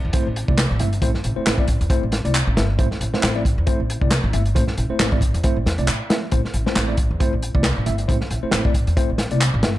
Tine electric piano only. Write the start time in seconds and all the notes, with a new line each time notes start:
0.14 A3 C4 E4 C5
0.48 A3 C4 E4 D5
0.80 A3 C4 E4 E5
1.02 A3 C4 E4 C5
1.36 A3 C4 E4 C5
1.59 A3 C4 E4 D5
1.90 A3 C4 E4 C5
2.25 A3 C4 E4 D5
2.57 A3 C4 E4 E5
2.79 A3 C4 E4 C5
3.14 A3 C4 E4 C5
3.35 A3 C4 E4 D5
3.67 A3 C4 E4 C5
4.01 A3 C4 E4 D5
4.34 A3 C4 E4 E5
4.55 A3 C4 E4 C5
4.90 A3 C4 E4 C5
5.12 A3 C4 E4 D5
5.44 A3 C4 E4 C5
5.79 A3 C4 E4 D5
6.10 A3 C4 E4 E5
6.32 A3 C4 E4 C5
6.66 A3 C4 E4 C5
6.88 A3 C4 E4 D5
7.20 A3 C4 E4 C5
7.54 A3 C4 E4 D5
7.86 A3 C4 E4 E5
8.08 A3 C4 E4 C5
8.43 A3 C4 E4 C5
8.65 A3 C4 E4 D5
8.97 A3 C4 E4 C5
9.31 A3 C4 E4 D5
9.63 A3 C4 E4 E5